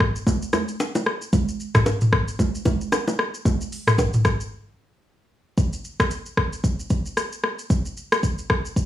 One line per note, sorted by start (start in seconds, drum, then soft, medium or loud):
0.00 kick medium
0.00 cross-stick loud
0.16 shaker medium
0.27 kick medium
0.27 low conga medium
0.27 shaker medium
0.42 shaker medium
0.53 cross-stick medium
0.53 low bongo medium
0.53 low conga medium
0.53 shaker medium
0.68 shaker soft
0.80 high bongo medium
0.80 shaker medium
0.95 low bongo medium
0.95 shaker medium
1.06 cross-stick medium
1.22 shaker medium
1.33 kick loud
1.33 low conga medium
1.33 shaker medium
1.48 shaker medium
1.60 shaker soft
1.75 kick medium
1.75 cross-stick loud
1.75 mid tom loud
1.75 shaker medium
1.86 high bongo medium
1.86 shaker medium
2.01 mid tom loud
2.01 shaker soft
2.13 kick medium
2.13 cross-stick loud
2.28 shaker medium
2.39 kick loud
2.39 low conga medium
2.39 shaker medium
2.55 shaker medium
2.65 kick loud
2.65 low bongo medium
2.65 low conga medium
2.65 shaker medium
2.81 shaker soft
2.92 cross-stick medium
2.92 high bongo medium
2.92 shaker medium
3.08 low bongo medium
3.08 shaker medium
3.19 cross-stick medium
3.34 shaker medium
3.45 kick loud
3.45 low conga medium
3.45 shaker medium
3.61 shaker medium
3.72 open hi-hat soft
3.72 shaker soft
3.87 cross-stick loud
3.87 mid tom loud
3.87 shaker medium
3.98 kick medium
3.98 high bongo medium
3.98 shaker medium
4.13 mid tom loud
4.13 shaker soft
4.25 kick medium
4.25 cross-stick loud
4.25 shaker medium
4.40 shaker medium
5.58 kick loud
5.58 shaker medium
5.73 shaker medium
5.84 shaker soft
6.00 kick medium
6.00 cross-stick loud
6.00 shaker medium
6.11 shaker medium
6.26 shaker soft
6.37 kick medium
6.37 cross-stick loud
6.53 shaker medium
6.64 kick loud
6.64 shaker medium
6.79 shaker medium
6.90 kick loud
6.90 shaker medium
7.05 shaker soft
7.17 cross-stick medium
7.17 shaker medium
7.32 shaker medium
7.44 cross-stick medium
7.59 shaker medium
7.70 kick loud
7.70 shaker medium
7.85 shaker medium
7.97 shaker soft
8.12 cross-stick loud
8.12 shaker medium
8.23 kick medium
8.23 shaker medium
8.38 shaker soft
8.50 kick medium
8.50 cross-stick loud
8.65 shaker medium
8.76 kick medium
8.76 shaker medium